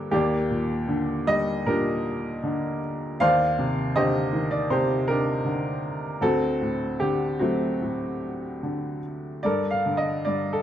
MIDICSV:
0, 0, Header, 1, 2, 480
1, 0, Start_track
1, 0, Tempo, 770218
1, 71, Time_signature, 4, 2, 24, 8
1, 1992, Tempo, 757576
1, 3912, Tempo, 792602
1, 4872, Tempo, 818554
1, 6520, End_track
2, 0, Start_track
2, 0, Title_t, "Upright piano"
2, 0, Program_c, 0, 0
2, 0, Control_c, 0, 64, 127
2, 0, Note_on_c, 0, 43, 43
2, 0, Note_on_c, 0, 50, 43
2, 0, Note_on_c, 0, 58, 39
2, 0, Note_on_c, 0, 62, 39
2, 0, Note_on_c, 0, 67, 64
2, 0, Note_on_c, 0, 69, 64
2, 0, Note_on_c, 0, 70, 59
2, 71, Note_off_c, 0, 67, 0
2, 71, Note_on_c, 0, 39, 51
2, 71, Note_on_c, 0, 67, 68
2, 78, Control_c, 0, 64, 0
2, 80, Note_off_c, 0, 69, 0
2, 81, Note_off_c, 0, 43, 0
2, 81, Note_off_c, 0, 70, 0
2, 82, Note_off_c, 0, 50, 0
2, 84, Note_off_c, 0, 58, 0
2, 84, Note_off_c, 0, 62, 0
2, 85, Note_on_c, 0, 58, 51
2, 86, Note_on_c, 0, 74, 51
2, 197, Control_c, 0, 64, 127
2, 313, Note_on_c, 0, 46, 32
2, 548, Note_on_c, 0, 50, 48
2, 790, Note_on_c, 0, 55, 44
2, 794, Note_on_c, 0, 75, 88
2, 812, Note_off_c, 0, 67, 0
2, 1013, Note_off_c, 0, 58, 0
2, 1013, Note_off_c, 0, 74, 0
2, 1026, Note_off_c, 0, 46, 0
2, 1035, Note_on_c, 0, 46, 43
2, 1037, Note_on_c, 0, 70, 67
2, 1040, Note_off_c, 0, 75, 0
2, 1046, Note_on_c, 0, 67, 45
2, 1047, Note_on_c, 0, 62, 47
2, 1488, Note_off_c, 0, 50, 0
2, 1518, Note_on_c, 0, 50, 50
2, 1729, Note_off_c, 0, 55, 0
2, 1732, Note_off_c, 0, 70, 0
2, 1967, Note_off_c, 0, 39, 0
2, 1969, Note_off_c, 0, 46, 0
2, 1975, Note_off_c, 0, 62, 0
2, 1975, Note_off_c, 0, 67, 0
2, 1980, Note_off_c, 0, 50, 0
2, 1995, Note_on_c, 0, 77, 94
2, 1999, Note_on_c, 0, 39, 55
2, 2001, Control_c, 0, 64, 0
2, 2001, Note_on_c, 0, 72, 69
2, 2001, Note_on_c, 0, 74, 63
2, 2126, Control_c, 0, 64, 127
2, 2238, Note_on_c, 0, 48, 40
2, 2447, Note_off_c, 0, 77, 0
2, 2470, Note_off_c, 0, 72, 0
2, 2473, Note_on_c, 0, 75, 78
2, 2474, Note_on_c, 0, 50, 47
2, 2479, Note_on_c, 0, 67, 58
2, 2480, Note_on_c, 0, 72, 51
2, 2709, Note_on_c, 0, 51, 41
2, 2815, Note_off_c, 0, 74, 0
2, 2824, Note_on_c, 0, 74, 67
2, 2842, Note_off_c, 0, 75, 0
2, 2938, Note_off_c, 0, 48, 0
2, 2938, Note_off_c, 0, 72, 0
2, 2947, Note_off_c, 0, 67, 0
2, 2947, Note_on_c, 0, 48, 39
2, 2947, Note_on_c, 0, 72, 73
2, 2951, Note_off_c, 0, 74, 0
2, 2956, Note_on_c, 0, 67, 51
2, 3183, Note_on_c, 0, 70, 72
2, 3190, Note_off_c, 0, 67, 0
2, 3196, Note_off_c, 0, 72, 0
2, 3199, Note_on_c, 0, 67, 46
2, 3200, Note_on_c, 0, 62, 42
2, 3404, Note_off_c, 0, 50, 0
2, 3419, Note_on_c, 0, 50, 39
2, 3638, Note_off_c, 0, 70, 0
2, 3642, Note_off_c, 0, 51, 0
2, 3885, Note_off_c, 0, 48, 0
2, 3890, Note_off_c, 0, 39, 0
2, 3891, Note_off_c, 0, 62, 0
2, 3891, Note_off_c, 0, 67, 0
2, 3892, Note_off_c, 0, 50, 0
2, 3902, Note_on_c, 0, 38, 47
2, 3908, Note_on_c, 0, 69, 79
2, 3913, Note_on_c, 0, 60, 55
2, 3913, Note_on_c, 0, 66, 62
2, 3920, Control_c, 0, 64, 0
2, 4013, Control_c, 0, 64, 127
2, 4146, Note_on_c, 0, 45, 36
2, 4379, Note_on_c, 0, 67, 68
2, 4386, Note_on_c, 0, 50, 40
2, 4400, Note_off_c, 0, 69, 0
2, 4610, Note_off_c, 0, 66, 0
2, 4619, Note_off_c, 0, 60, 0
2, 4619, Note_on_c, 0, 66, 60
2, 4628, Note_on_c, 0, 57, 41
2, 4628, Note_on_c, 0, 60, 46
2, 4632, Note_off_c, 0, 67, 0
2, 4632, Note_on_c, 0, 54, 37
2, 4863, Note_off_c, 0, 45, 0
2, 4872, Note_on_c, 0, 45, 36
2, 5324, Note_off_c, 0, 50, 0
2, 5352, Note_on_c, 0, 50, 37
2, 5561, Note_off_c, 0, 66, 0
2, 5565, Note_off_c, 0, 57, 0
2, 5565, Note_off_c, 0, 60, 0
2, 5567, Note_off_c, 0, 54, 0
2, 5803, Note_off_c, 0, 38, 0
2, 5807, Note_off_c, 0, 45, 0
2, 5818, Note_off_c, 0, 50, 0
2, 5820, Note_on_c, 0, 74, 69
2, 5829, Note_on_c, 0, 43, 42
2, 5834, Note_on_c, 0, 69, 46
2, 5836, Note_on_c, 0, 70, 53
2, 5837, Control_c, 0, 64, 0
2, 5927, Control_c, 0, 64, 127
2, 5983, Note_on_c, 0, 77, 68
2, 5991, Note_off_c, 0, 74, 0
2, 6072, Note_on_c, 0, 50, 34
2, 6136, Note_off_c, 0, 77, 0
2, 6139, Note_on_c, 0, 75, 65
2, 6300, Note_off_c, 0, 43, 0
2, 6300, Note_on_c, 0, 74, 62
2, 6309, Note_on_c, 0, 43, 36
2, 6311, Note_off_c, 0, 75, 0
2, 6456, Note_off_c, 0, 69, 0
2, 6465, Note_on_c, 0, 69, 62
2, 6470, Note_off_c, 0, 74, 0
2, 6520, Note_off_c, 0, 43, 0
2, 6520, Note_off_c, 0, 50, 0
2, 6520, Note_off_c, 0, 69, 0
2, 6520, Note_off_c, 0, 70, 0
2, 6520, End_track
0, 0, End_of_file